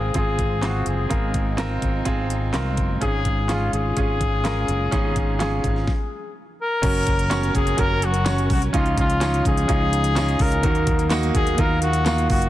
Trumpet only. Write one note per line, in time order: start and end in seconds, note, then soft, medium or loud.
0.00 0.13 G#4 medium
0.17 0.67 G#4 medium
0.66 0.88 F#4 medium
0.89 1.55 G#4 medium
3.02 3.52 G#4 medium
3.51 3.74 F4 medium
3.74 6.32 G#4 medium
6.61 7.51 A#4 medium
7.56 7.81 G#4 medium
7.79 8.06 A#4 loud
8.04 8.51 F#4 medium
8.52 8.62 F#4 medium
8.75 8.97 F4 medium
8.99 9.43 F4 medium
9.47 10.43 G#4 loud
10.42 11.09 A#4 medium
11.36 11.61 G#4 loud
11.60 11.82 A#4 loud
11.82 12.27 F#4 loud
12.30 12.49 F#4 medium